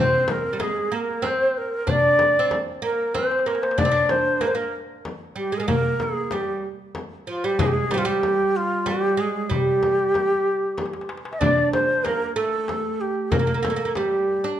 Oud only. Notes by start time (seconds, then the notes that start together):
Already playing: C4
0.53 G3
0.60 G#3
0.92 A#3
1.22 C4
1.87 D4
2.39 C4
2.82 A#3
3.14 C4
3.46 A#3
3.78 D4
3.85 C4
3.92 D4
4.41 A#3
4.55 A#3
5.36 G3
5.52 G#3
5.60 G#3
5.68 A#3
6.32 G3
7.27 F3
7.44 G3
7.59 G#3
7.91 F3 G3
7.98 G3
8.05 G3
8.86 G3
9.17 G#3
9.50 G3
11.41 D4
12.04 A#3
12.36 A3
13.32 A#3
13.39 A#3
13.47 A#3
13.54 A#3
13.63 A#3
13.70 A#3
13.76 A#3
13.85 A#3
13.97 G3
14.44 D4